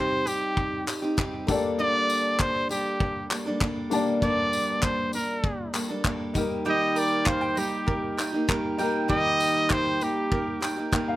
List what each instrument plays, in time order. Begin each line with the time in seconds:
Already playing: steel-string acoustic guitar C3 G3 C4 D#4 G4, grand piano D#4 G4 C5
0.00 trumpet C5
0.26 steel-string acoustic guitar G3 C4 D#4 G4, trumpet G4, tambourine
0.57 kick
0.87 steel-string acoustic guitar G3 C4 D#4 G4, clap, tambourine
1.02 steel-string acoustic guitar C4 D#4 G4
1.17 steel-string acoustic guitar G3 C4 D#4 G4, kick, clap
1.47 steel-string acoustic guitar G3 A#3 D4 A4, grand piano A3 D4 G4 A4 D5, kick, tambourine
1.53 grand piano A#3
1.79 steel-string acoustic guitar G2 D3 G3 A#3 D4 A4, trumpet D5
2.10 tambourine
2.39 trumpet C5, kick, clap
2.69 steel-string acoustic guitar G3 A#3 D4 A4, trumpet G4, tambourine
3.00 kick
3.30 steel-string acoustic guitar G3 A#3 D4 A4, clap, tambourine
3.46 steel-string acoustic guitar G3 A#3 D4 A4
3.60 steel-string acoustic guitar G3 A#3 D4 A4, kick, clap
3.90 steel-string acoustic guitar G3 A#3 D4 A4, grand piano A#3 D4 G4 A5, tambourine
3.94 grand piano D5
4.22 steel-string acoustic guitar G2 D3 G3 A#3 D4 A4, trumpet D5, kick
4.53 tambourine
4.82 trumpet C5, kick, clap
5.13 steel-string acoustic guitar G3 A#3 D4, trumpet A#4, tambourine
5.44 kick
5.73 steel-string acoustic guitar G3 A#3 D4 A4, clap, tambourine
5.89 steel-string acoustic guitar G3 A#3 D4 A4
6.04 steel-string acoustic guitar G3 A#3 D4 A4, kick, clap
6.34 steel-string acoustic guitar G3 A#3 D#4 G4, grand piano D#4 G4, kick, tambourine
6.38 grand piano A#4
6.65 steel-string acoustic guitar D#3 G3 A#3 D#4 G4, mandolin G3 G5
6.69 trumpet D#5
6.95 mandolin A#4, trumpet D5, tambourine
7.26 trumpet C5, mandolin F5, kick, clap
7.41 mandolin G5
7.55 steel-string acoustic guitar G3 A#3 D#4 G4, mandolin D#4, trumpet G4, tambourine
7.87 mandolin A#4, kick
8.17 steel-string acoustic guitar G3 A#3 D#4 G4, mandolin G5, clap, tambourine
8.33 steel-string acoustic guitar A#3 D#4 G4
8.48 steel-string acoustic guitar G3 A#3 D#4 G4, mandolin A#4, kick, clap
8.77 steel-string acoustic guitar G3 A#3 D#4 G4, grand piano D#4 G4 A#4, mandolin G5, tambourine
9.08 steel-string acoustic guitar D#3 G3 A#3 D#4 G4, mandolin G3 G5, trumpet D#5, kick
9.40 mandolin A#4, tambourine
9.70 trumpet C5, mandolin G5, kick, clap
10.00 steel-string acoustic guitar G3 A#3 D#4 G4, mandolin D#4, trumpet G4, tambourine
10.32 mandolin A#4, kick
10.61 steel-string acoustic guitar G3 A#3 D#4 G4, mandolin G5, clap, tambourine
10.76 steel-string acoustic guitar A#3 D#4 G4
10.92 steel-string acoustic guitar G3 A#3 D#4 G4, mandolin A#4, grand piano G5, kick, clap
11.08 grand piano F5